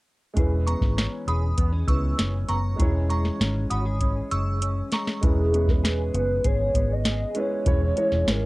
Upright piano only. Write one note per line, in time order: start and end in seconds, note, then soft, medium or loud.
0.33 1.84 G#3 medium
0.33 1.85 C#4 medium
0.33 1.85 E4 medium
0.38 1.86 B4 medium
1.87 2.75 G#3 soft
1.87 2.77 C#4 soft
1.87 2.78 E4 soft
1.87 2.80 B4 soft
2.76 5.17 G#3 medium
2.76 5.18 C#4 medium
2.76 5.19 E4 medium
2.82 5.20 C#5 medium
5.21 5.41 G#3 medium
5.21 5.42 C#4 medium
5.21 5.42 E4 medium
5.21 5.42 B4 medium
5.52 6.29 G#3 medium
5.52 6.29 C#4 medium
5.52 6.30 E4 medium
5.52 6.30 B4 medium
7.34 7.54 G#3 medium
7.34 7.55 C#4 medium
7.34 7.55 E4 medium
7.34 7.55 B4 medium
7.65 7.85 G#3 medium
7.65 7.85 C#4 medium
7.65 7.85 E4 medium
7.65 7.86 C#5 medium
7.96 8.46 G#3 medium
7.96 8.46 C#4 medium
7.96 8.46 E4 medium
7.96 8.46 C#5 medium